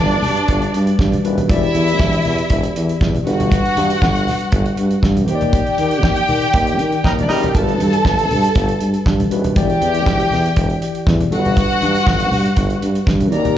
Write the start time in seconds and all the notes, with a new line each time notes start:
Already playing: G1 G3 D4 F#4 B4 D5
0.11 closed hi-hat
0.22 G2, snare, open hi-hat, muted conga, low conga
0.37 closed hi-hat
0.48 G1, kick, closed hi-hat
0.62 closed hi-hat
0.74 G2, closed hi-hat, muted conga
0.87 closed hi-hat
0.99 G2, kick, snare, muted conga, high conga
1.12 closed hi-hat, high conga, low conga
1.24 D#1 G3 D4 F#4 B4, closed hi-hat
1.38 closed hi-hat, high conga, low conga
1.49 E1 E3 E4 F#4 D5 E5, kick, closed hi-hat
1.56 G4
1.63 closed hi-hat
1.75 E2, closed hi-hat, muted conga, high conga
1.88 closed hi-hat
2.00 E1, kick, snare, muted conga, high conga
2.13 closed hi-hat
2.25 E2, open hi-hat, muted conga, low conga
2.39 closed hi-hat
2.50 E1, kick, closed hi-hat, muted conga
2.64 closed hi-hat
2.76 E2, closed hi-hat, muted conga
2.89 closed hi-hat
3.01 E2, kick, snare, muted conga, high conga
3.15 closed hi-hat, high conga, low conga
3.26 G1 G3 D4 F#4 B4 F#5, closed hi-hat, muted conga
3.40 closed hi-hat, high conga, low conga
3.52 kick, closed hi-hat
3.66 closed hi-hat
3.77 G2, closed hi-hat, muted conga, high conga
3.90 closed hi-hat
4.02 G1, kick, snare, high conga
4.16 closed hi-hat
4.27 snare, open hi-hat, low conga
4.41 closed hi-hat
4.52 G1, kick, closed hi-hat, muted conga
4.66 closed hi-hat
4.77 G2, closed hi-hat
4.91 closed hi-hat
5.03 G2, kick, snare, high conga
5.16 closed hi-hat, high conga, low conga
5.28 D#2 D#3 D#4 G4 C5 G5, closed hi-hat
5.35 D5
5.41 closed hi-hat, high conga, low conga
5.53 kick, closed hi-hat
5.67 closed hi-hat
5.78 D#3, closed hi-hat, high conga
5.91 closed hi-hat
6.03 D#2, kick, snare, muted conga, high conga
6.16 closed hi-hat
6.28 D#3, open hi-hat, muted conga, low conga
6.42 closed hi-hat
6.53 D#2, kick, closed hi-hat, muted conga
6.67 closed hi-hat
6.79 D#3, closed hi-hat, muted conga
6.92 closed hi-hat
7.04 D#2 G3 D#4 A#4, kick, snare, high conga
7.19 D4 D5, closed hi-hat, high conga, low conga
7.29 F#1 D#3 G3 D#4 G4 A#4 D#5, open hi-hat, muted conga
7.38 F4 F5
7.43 G4 G5, closed hi-hat, high conga, low conga
7.54 G1 G3 D4 F#4 A4 A#4 A5, kick, closed hi-hat
7.62 B4
7.68 closed hi-hat
7.80 G2, closed hi-hat, muted conga, high conga
7.93 closed hi-hat
8.05 G1, kick, snare, high conga
8.19 closed hi-hat
8.31 G2, open hi-hat, low conga
8.44 closed hi-hat
8.55 G1, kick, closed hi-hat
8.68 closed hi-hat
8.80 G2, closed hi-hat
8.94 closed hi-hat
9.06 G2, kick, snare, muted conga, high conga
9.20 closed hi-hat, high conga, low conga
9.31 D#1 G3 D4 F#4 B4, closed hi-hat, muted conga
9.44 closed hi-hat, high conga, low conga
9.56 E1 E3 E4 G4 D5 G5, kick, closed hi-hat
9.70 closed hi-hat
9.81 E2, closed hi-hat, high conga
9.95 closed hi-hat
10.06 E1, kick, snare, muted conga, high conga
10.20 closed hi-hat
10.31 E2, snare, open hi-hat, low conga
10.46 closed hi-hat
10.56 E1, kick, closed hi-hat
10.70 closed hi-hat
10.82 closed hi-hat, muted conga
10.95 closed hi-hat
11.07 E2, kick, snare, muted conga, high conga
11.21 closed hi-hat, high conga, low conga
11.31 G1 G3 D4 F#4 A4 F#5, closed hi-hat, muted conga
11.39 B4
11.45 closed hi-hat, high conga, low conga
11.57 kick, closed hi-hat
11.70 closed hi-hat
11.82 G2, closed hi-hat, muted conga, high conga
11.95 closed hi-hat
12.07 G1, kick, snare, muted conga, high conga
12.20 closed hi-hat
12.32 G2, open hi-hat, low conga
12.46 closed hi-hat
12.57 G1, kick, closed hi-hat
12.70 closed hi-hat
12.82 G2, closed hi-hat, muted conga
12.95 closed hi-hat
13.06 G2, kick, snare, muted conga, high conga
13.20 closed hi-hat, high conga, low conga
13.31 D#2 D#3 D#4 F#4 A#4 D5 A#5, closed hi-hat, muted conga
13.38 G4
13.45 closed hi-hat, high conga, low conga